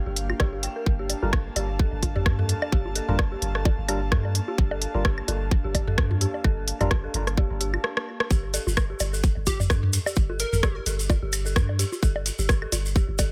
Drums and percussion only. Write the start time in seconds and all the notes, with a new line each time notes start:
0.16 open hi-hat
0.30 low bongo, high woodblock
0.40 kick, cross-stick, high bongo
0.63 open hi-hat
0.86 kick
1.10 open hi-hat, high bongo
1.23 low bongo
1.33 kick, cross-stick, high woodblock
1.56 open hi-hat, high bongo
1.79 kick
2.03 kick, open hi-hat, low bongo
2.16 mid tom, high bongo
2.26 kick, cross-stick
2.39 mid tom
2.49 open hi-hat
2.62 high bongo, high woodblock
2.72 kick
2.85 low bongo
2.95 open hi-hat
3.09 mid tom
3.19 kick, cross-stick, high bongo
3.42 open hi-hat
3.55 cross-stick
3.65 kick, high bongo, low bongo
3.88 open hi-hat, high woodblock
4.12 kick, cross-stick
4.25 high bongo
4.35 open hi-hat
4.48 low bongo
4.58 kick
4.71 high bongo
4.82 open hi-hat
5.05 kick, cross-stick
5.18 high woodblock
5.28 open hi-hat, high bongo, low bongo
5.51 kick
5.75 kick, open hi-hat, high bongo
5.88 mid tom
5.98 kick, cross-stick
6.11 mid tom, low bongo
6.21 open hi-hat
6.34 high bongo
6.44 kick, high woodblock
6.68 open hi-hat
6.81 mid tom, open hi-hat, high bongo
6.91 kick, cross-stick, low bongo
7.14 open hi-hat
7.27 cross-stick, open hi-hat
7.37 kick, high bongo
7.61 open hi-hat
7.74 low bongo, high woodblock
7.84 cross-stick
7.97 cross-stick
8.20 cross-stick
8.31 kick, maracas
8.54 open hi-hat, high bongo, maracas
8.67 low bongo, maracas
8.77 kick, cross-stick, high woodblock, maracas
9.00 open hi-hat, high bongo, maracas
9.14 maracas
9.23 kick, maracas
9.47 kick, open hi-hat, low bongo, maracas
9.60 mid tom, high bongo, maracas
9.70 kick, cross-stick, maracas
9.83 mid tom
9.93 open hi-hat, maracas
10.06 high bongo, high woodblock, maracas
10.16 kick, maracas
10.30 low bongo
10.39 open hi-hat, maracas
10.53 mid tom, maracas
10.63 kick, cross-stick, high bongo, maracas
10.86 open hi-hat, maracas
10.99 open hi-hat, maracas
11.10 kick, high bongo, low bongo, maracas
11.33 open hi-hat, high woodblock, maracas
11.46 maracas
11.56 kick, cross-stick, maracas
11.69 high bongo
11.79 open hi-hat, maracas
11.92 low bongo, maracas
12.03 kick, maracas
12.16 high bongo
12.26 open hi-hat, maracas
12.39 maracas
12.49 kick, cross-stick, maracas
12.62 high woodblock
12.72 open hi-hat, high bongo, low bongo, maracas
12.86 maracas
12.96 kick, maracas
13.18 kick, open hi-hat, high bongo, maracas